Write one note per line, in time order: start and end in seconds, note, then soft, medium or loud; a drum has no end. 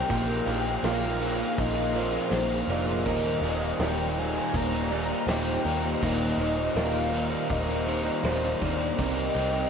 0.00 0.12 D#4 medium
0.00 0.09 A#4 medium
0.00 3.02 A#4 medium
0.07 0.39 A#1 loud
0.07 0.64 A#2 loud
0.07 0.44 F3 loud
0.07 0.29 A#3 medium
0.07 0.27 D#4 loud
0.07 0.25 F4 loud
0.07 3.03 G#4 medium
0.07 0.46 A#4 loud
0.07 8.94 A#5 medium
0.07 kick loud
0.07 crash medium
0.12 0.88 G5 loud
0.26 0.45 A#3 medium
0.26 0.46 D#4 medium
0.26 0.46 F4 medium
0.45 0.76 A#1 loud
0.45 0.83 A#2 medium
0.45 0.82 F3 medium
0.45 0.83 A#3 medium
0.45 0.83 D#4 medium
0.45 0.84 F4 medium
0.45 0.83 G#4 medium
0.45 crash medium
0.65 0.84 A#3 medium
0.65 0.84 D#4 medium
0.65 0.84 F4 medium
0.82 1.42 A#1 loud
0.82 1.57 A#2 medium
0.82 1.19 F3 loud
0.82 1.20 A#3 loud
0.82 1.21 D#4 loud
0.82 1.21 F4 loud
0.82 2.34 A#4 medium
0.82 1.61 F5 loud
0.82 snare loud
0.82 crash loud
1.02 1.40 A#3 medium
1.02 1.40 D#4 medium
1.02 1.37 F4 medium
1.20 1.58 A#2 medium
1.20 1.76 F3 medium
1.20 1.40 A#3 medium
1.20 1.39 D#4 medium
1.20 1.36 F4 medium
1.20 crash medium
1.37 1.78 A#3 medium
1.37 1.76 D#4 medium
1.37 1.74 F4 medium
1.58 2.17 A#1 medium
1.58 1.94 A#2 medium
1.58 1.95 F3 medium
1.58 1.96 A#3 loud
1.58 1.99 D#5 loud
1.58 kick loud
1.58 crash medium
1.75 1.94 A#3 medium
1.75 1.94 D#4 medium
1.75 1.95 F4 medium
1.93 2.30 A#2 loud
1.93 2.29 F3 medium
1.93 2.13 A#3 medium
1.93 2.11 D#4 medium
1.93 2.10 F4 medium
1.93 2.31 D5 medium
1.93 crash medium
1.97 2.72 C5 loud
2.11 2.31 A#3 medium
2.11 2.31 D#4 medium
2.11 2.31 F4 medium
2.29 2.61 A#1 medium
2.29 3.02 A#2 loud
2.29 2.66 F3 medium
2.29 2.68 A#3 loud
2.29 2.69 D#4 loud
2.29 2.69 F4 loud
2.29 2.68 C5 medium
2.29 snare loud
2.29 crash loud
2.67 3.06 F1 loud
2.67 3.03 A#2 medium
2.67 3.03 F3 medium
2.67 2.90 A#3 medium
2.67 2.88 D#4 medium
2.67 2.86 F4 medium
2.67 3.06 A#4 medium
2.67 3.08 D5 medium
2.67 crash medium
2.87 3.08 A#3 medium
2.87 3.09 D#4 medium
2.87 3.03 F4 medium
3.05 3.35 D#1 loud
3.05 3.80 D#2 medium
3.05 3.62 A#2 loud
3.05 3.27 D#3 loud
3.05 3.26 G3 loud
3.05 3.25 A#3 loud
3.05 3.46 A#4 loud
3.05 9.70 C5 medium
3.05 3.84 D#5 loud
3.05 kick loud
3.05 crash medium
3.10 3.24 D#4 loud
3.25 3.42 D#3 medium
3.25 3.43 G3 medium
3.25 3.44 A#3 medium
3.25 3.45 D#4 medium
3.42 3.71 D#1 loud
3.42 3.81 D#2 loud
3.42 3.80 A#2 loud
3.42 3.81 D#3 medium
3.42 3.82 G3 medium
3.42 3.82 A#3 medium
3.42 3.83 D#4 medium
3.42 3.80 G#5 medium
3.42 crash medium
3.61 3.79 D#3 medium
3.61 3.80 G3 medium
3.61 3.81 A#3 medium
3.61 3.81 D#4 medium
3.80 4.38 D#1 medium
3.80 5.28 D#2 loud
3.80 4.55 A#2 loud
3.80 4.17 D#3 loud
3.80 4.18 G3 loud
3.80 4.19 A#3 loud
3.80 4.20 D#4 loud
3.80 5.27 A#4 medium
3.80 4.18 G5 loud
3.80 snare loud
3.80 crash medium
3.98 4.36 D#3 medium
3.98 4.36 G3 medium
3.98 4.36 A#3 medium
3.98 4.35 D#4 medium
4.17 4.54 D#2 medium
4.17 4.54 A#2 medium
4.17 4.38 D#3 medium
4.17 4.38 G3 medium
4.17 4.38 A#3 medium
4.17 4.36 D#4 medium
4.17 4.57 G#5 loud
4.17 crash medium
4.36 4.75 D#3 medium
4.36 4.75 G3 medium
4.36 4.74 A#3 medium
4.36 4.73 D#4 medium
4.54 5.13 D#1 loud
4.54 4.91 D#2 loud
4.54 4.91 A#2 medium
4.54 4.91 D#3 loud
4.54 5.31 A#5 loud
4.54 kick loud
4.54 crash medium
4.74 4.90 D#3 medium
4.74 4.92 G3 medium
4.74 4.93 A#3 medium
4.74 4.94 D#4 medium
4.90 5.27 D#2 loud
4.90 5.28 A#2 loud
4.90 5.12 D#3 medium
4.90 5.12 G3 medium
4.90 5.11 A#3 medium
4.90 5.27 D5 medium
4.90 crash medium
4.94 5.09 D#4 loud
5.10 5.29 D#3 medium
5.10 5.29 G3 medium
5.10 5.30 A#3 medium
5.10 5.31 D#4 medium
5.27 5.57 D#1 medium
5.27 6.00 D#2 medium
5.27 6.00 A#2 medium
5.27 5.63 D#3 medium
5.27 5.65 G3 loud
5.27 5.66 A#3 loud
5.27 5.64 C5 medium
5.27 6.06 G5 loud
5.27 snare loud
5.27 crash loud
5.31 5.67 D#4 loud
5.48 snare soft
5.64 5.94 D#2 medium
5.64 6.01 D#2 medium
5.64 6.03 A#2 medium
5.64 5.84 D#3 medium
5.64 5.84 G3 medium
5.64 5.84 A#3 medium
5.64 5.83 D#4 loud
5.64 6.02 A#4 medium
5.64 crash medium
5.83 6.01 D#3 medium
5.83 6.03 G3 medium
5.83 6.03 A#3 medium
5.83 6.03 D#4 medium
6.01 6.32 D#1 loud
6.01 6.57 D#2 loud
6.01 6.57 A#2 medium
6.01 6.21 D#3 loud
6.01 6.20 G3 loud
6.01 6.19 A#3 loud
6.01 6.18 D#4 loud
6.01 6.43 A#4 loud
6.01 6.79 D#5 loud
6.01 kick loud
6.01 crash loud
6.19 6.36 D#3 medium
6.19 6.37 G3 medium
6.19 6.39 A#3 medium
6.19 6.39 D#4 medium
6.37 6.68 D#1 medium
6.37 6.75 D#2 medium
6.37 6.76 A#2 medium
6.37 6.74 D#3 medium
6.37 6.76 G3 medium
6.37 6.76 A#3 medium
6.37 6.77 D#4 medium
6.37 6.76 G#5 medium
6.37 crash medium
6.41 6.76 D#3 loud
6.57 6.74 D#3 medium
6.57 6.76 G3 medium
6.57 6.76 A#3 medium
6.57 6.77 D#4 medium
6.75 7.35 D#1 loud
6.75 7.49 D#2 loud
6.75 7.49 A#2 loud
6.75 7.09 D#3 loud
6.75 7.11 G3 loud
6.75 7.12 A#3 loud
6.75 7.13 D#4 loud
6.75 8.24 A#4 medium
6.75 7.53 F5 loud
6.75 snare loud
6.75 crash medium
6.93 7.31 D#3 medium
6.93 7.31 G3 medium
6.93 7.31 A#3 medium
6.93 7.30 D#4 medium
7.11 7.49 D#2 medium
7.11 7.50 A#2 medium
7.11 7.31 D#3 medium
7.11 7.30 G3 medium
7.11 7.30 A#3 medium
7.11 7.29 D#4 medium
7.11 crash medium
7.15 7.50 D#3 loud
7.30 7.68 D#3 medium
7.30 7.66 G3 medium
7.30 7.67 A#3 medium
7.30 7.66 D#4 medium
7.49 8.09 D#1 loud
7.49 7.85 D#2 medium
7.49 7.85 A#2 loud
7.49 7.86 D#3 loud
7.49 7.89 D#5 loud
7.49 kick loud
7.49 crash medium
7.66 7.83 D#3 medium
7.66 7.84 G3 medium
7.66 7.86 A#3 medium
7.66 7.87 D#4 medium
7.84 8.24 D#2 loud
7.84 8.25 A#2 loud
7.84 8.04 D#3 medium
7.84 8.03 G3 medium
7.84 8.03 A#3 medium
7.84 8.02 D#4 medium
7.84 8.24 C5 medium
7.84 crash medium
7.89 8.25 D#5 medium
8.02 8.21 D#3 medium
8.02 8.21 G3 medium
8.02 8.23 A#3 medium
8.02 8.23 D#4 medium
8.21 8.53 D#1 medium
8.21 8.94 D#2 medium
8.21 8.94 A#2 loud
8.21 8.57 D#3 loud
8.21 8.58 G3 loud
8.21 8.60 A#3 loud
8.21 8.61 D#4 loud
8.21 8.61 C5 medium
8.25 8.60 D#2 medium
8.25 8.61 A#2 medium
8.25 8.63 C5 medium
8.25 snare loud
8.25 crash loud
8.44 snare soft
8.58 8.96 D#2 medium
8.58 8.91 D#2 medium
8.58 8.96 A#2 medium
8.58 8.78 D#3 medium
8.58 8.77 G3 medium
8.58 8.78 A#3 medium
8.58 8.76 D#4 medium
8.58 9.02 D5 medium
8.58 kick medium
8.62 8.98 A#4 medium
8.62 crash medium
8.76 8.95 D#3 medium
8.76 8.94 G3 medium
8.76 8.97 A#3 medium
8.76 8.97 D#4 medium
8.95 9.28 C2 medium
8.95 9.52 C3 loud
8.95 9.32 G3 medium
8.95 9.15 C4 medium
8.95 9.15 D#4 loud
8.95 9.13 G4 loud
8.95 9.70 A#4 loud
8.95 9.70 A#5 medium
8.95 kick loud
8.95 crash medium
9.00 9.70 D#5 loud
9.14 9.32 C4 medium
9.14 9.34 D#4 medium
9.14 9.34 G4 medium
9.33 9.64 C2 medium
9.33 9.70 C3 medium
9.33 9.70 G3 medium
9.33 9.70 C4 medium
9.33 9.70 D#4 medium
9.33 9.70 G4 medium
9.33 crash medium
9.51 9.70 C4 medium
9.51 9.70 D#4 medium
9.51 9.70 G4 medium